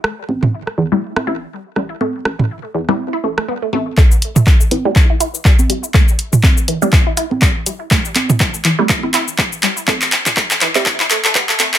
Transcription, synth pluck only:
X:1
M:4/4
L:1/16
Q:"Swing 16ths" 1/4=122
K:Am
V:1 name="Synth pluck"
A, z4 z E, G, z E E z3 G, z | A, z4 z E, G, z E A, A, B, A, A, z | A, z4 z E, G, z E E z3 G, z | A, z4 z E, G, z E E z3 G, z |
A, z4 z E, G, z E E z3 G, z | A, z4 z E, G, z E A, A, B, A, A, z |]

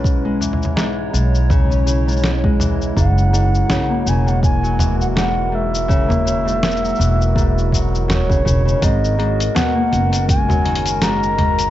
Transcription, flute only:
X:1
M:4/4
L:1/16
Q:"Swing 16ths" 1/4=82
K:F#mix
V:1 name="Flute"
z16 | f6 g f g3 f f2 e2- | e12 c4 | d4 f4 g4 a4 |]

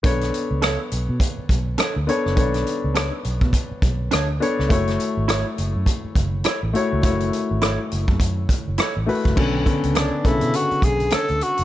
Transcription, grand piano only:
X:1
M:4/4
L:1/8
Q:"Swing 16ths" 1/4=103
K:Bdor
V:1 name="Grand piano"
[B,DAc]3 z4 [B,DAc] | [B,DAc]3 z4 [B,DAc] | [A,EFc]3 z4 [A,EFc] | [A,EFc]3 z4 [A,EFB] |
[D,B,CA] [D,B,CA] z [C,D,B,CA]3 z2 |]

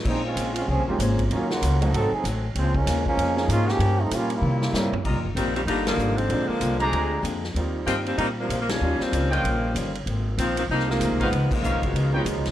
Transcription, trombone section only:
X:1
M:4/4
L:1/8
Q:"Swing" 1/4=192
K:Cphr
V:1 name="Trombone section"
[F,A,CE] [A,CDF]2 [A,CDF] [F,CDA] [E,A,CG] z2 | [_G,B,DF] [D,B,F_G]2 [D,F,B,G] [G,CE=A] [G,CE_A] z2 | [D,F,A,C] [F,A,B,D]2 [F,A,B,D]3 [A,B,DF] [F,B,DG]- | [F,B,DG] [F,=A,CE] [G,B,DF] [G,B,=EF]4 z |
[K:Cm] z8 | z8 | z8 | z8 |
z8 | z8 |]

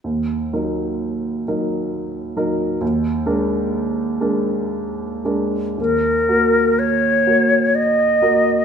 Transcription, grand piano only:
X:1
M:3/4
L:1/8
Q:1/4=63
K:Ebm
V:1 name="Grand piano"
E,, [G,EB]2 [G,EB]2 [G,EB] | E,, [A,=DB]2 [A,DB]2 [A,DB] | E,, [B,GB]2 [B,GB]2 [B,GB] |]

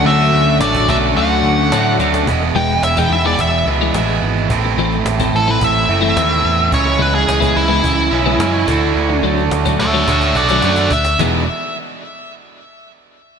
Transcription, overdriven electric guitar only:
X:1
M:4/4
L:1/8
Q:1/4=108
K:E
V:1 name="Overdriven electric guitar"
[=D,A,F]2 [D,A,=DF] [D,A,DF] [D,A,F]2 [D,A,DF] [D,A,DF] | [E,,B,,E,G,B,E]4- [E,,B,,E,G,B,E] [E,,B,,E,G,B,E] [E,,B,,E,G,B,E]2 | [A,,E,A,=CE]4- [A,,E,A,CE] [A,,E,A,CE] [A,,E,A,CE]2 | [C,E,G,CE]4- [C,E,G,CE] [C,E,G,CE] [C,E,G,CE] [=D,A,=DF]- |
[=D,A,=DF]4 [D,A,DF] [D,A,DF]2 z | [E,,B,,E,G,B,E] z6 z |]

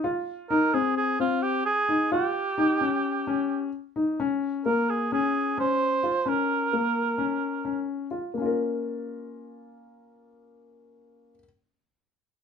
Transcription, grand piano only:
X:1
M:9/8
L:1/8
Q:3/8=87
K:Bbdor
V:1 name="Grand piano"
F2 E C2 C2 z E | F2 E D2 D2 z E | D2 B,2 D2 D2 F | D2 B,2 D2 D2 F |
[B,DFB]8- [B,DFB]- | [B,DFB]8- [B,DFB] |]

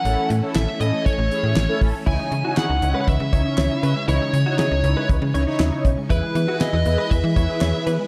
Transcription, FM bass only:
X:1
M:4/4
L:1/16
Q:1/4=119
K:C#m
V:1 name="FM bass" clef=bass
A,,, z A,, z A,,, z A,, z2 A,,, z A,, A,,, z A,,, z | C,, z C, z2 C,, C,, z C,, C, C,, z C,, z C, z | C,, z C, z2 C,, C,, z C,, C, C,, z D,, z B,,, z | E,, z E, z2 E,, E,, z E,, E, E,, z E,, z E, z |]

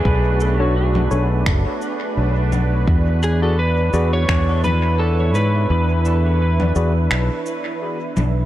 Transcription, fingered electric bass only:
X:1
M:4/4
L:1/8
Q:"Swing 16ths" 1/4=85
K:Emix
V:1 name="Fingered electric bass" clef=bass
B,,,3 B,,, F,,, z B,,,2 | E,,3 E,, E,,3 G,, | E,,3 E,, B,,, z2 B,,, |]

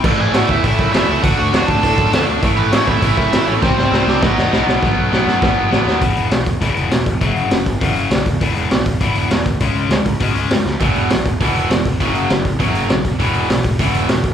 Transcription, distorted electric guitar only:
X:1
M:4/4
L:1/8
Q:1/4=201
K:Bmix
V:1 name="Distorted electric guitar" clef=bass
[A,,E,A,]2 [A,,E,A,]2 [A,,E,A,]2 [A,,E,A,]2 | [=D,A,=D]2 [D,A,D]2 [D,A,D]2 [D,A,D]2 | [A,,E,A,]2 [A,,E,A,]2 [A,,E,A,]2 [A,,E,A,]2 | [=C,=G,=C]2 [C,G,C]2 [B,,F,B,]2 [B,,F,B,]2 |
[B,,F,B,]2 [B,,F,B,]2 [B,,F,B,]2 [B,,F,B,]2 | [E,,B,,E,]2 [E,,B,,] z [E,,B,,E,]2 [E,,B,,] z | [F,,C,F,]2 [F,,C,] z [F,,C,F,]2 [F,,C,] z | [E,,B,,E,]2 [E,,B,,] z [E,,B,,E,]2 [E,,B,,] z |
[C,G,C]2 [C,G,] z [C,G,C]2 [C,G,] z | [E,,B,,E,]2 [E,,B,,] z [E,,B,,E,]2 [E,,B,,] z | [F,,C,F,]2 [F,,C,] z [F,,C,F,]2 [F,,C,] z | [E,,B,,E,]2 [E,,B,,] z [E,,B,,E,]2 [E,,B,,] z |]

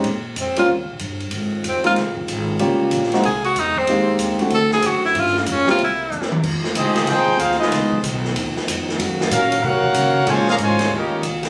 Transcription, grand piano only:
X:1
M:4/4
L:1/8
Q:"Swing" 1/4=188
K:Fm
V:1 name="Grand piano"
z3 [G,B,CDF] z4 | z3 [A,B,CEF] z4 | [G,B,DFG]3 [A,B,CE_G] z4 | [A,B,CEG]3 [=A,C=D=E_G] z4 |
z3 [G,B,C=EG] z4 | z8 | z8 | z8 |
z8 |]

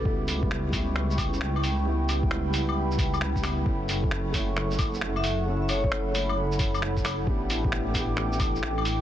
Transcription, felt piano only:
X:1
M:4/4
L:1/16
Q:"Swing 16ths" 1/4=133
K:F#phr
V:1 name="Felt piano"
[G,B,E]3 [G,B,E]3 [G,B,E]8- [G,B,E]2 | [G,B,E]3 [G,B,E]3 [G,B,E]8 [G,B,E]2 | [A,CE]3 [A,CE]3 [A,CE]8- [A,CE]2 | [A,CE]3 [A,CE]3 [A,CE]8- [A,CE]2 |
[B,DG]3 [B,DG]3 [B,DG]8- [B,DG]2 |]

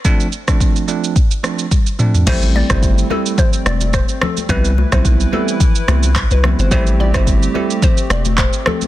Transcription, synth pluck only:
X:1
M:4/4
L:1/16
Q:"Swing 16ths" 1/4=108
K:Am
V:1 name="Synth pluck"
z16 | c z d c z2 A z c z d z c z A z | B2 z c z2 A z6 B z c | c z d c z2 A z c z d z c z A z |]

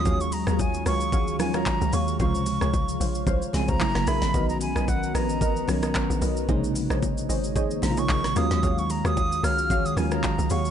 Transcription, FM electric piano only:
X:1
M:4/4
L:1/8
Q:"Swing 16ths" 1/4=112
K:Ebdor
V:1 name="FM electric piano" clef=bass
[E,G,A,DF]2 z3 [E,G,A,DF]2 z | [C,D,F,A,F]3 z2 [D,F,A,CA] [D,G,A,=A,B,_F]2 | [=D,E,G,_CGB]3 z2 [E,G,C_DB]2 z | [C,D,A,B,E]3 z2 [C,D,A,B,EF]2 [E,G,A,DF]- |
[E,G,A,DF]2 z3 [E,G,A,DF]2 z |]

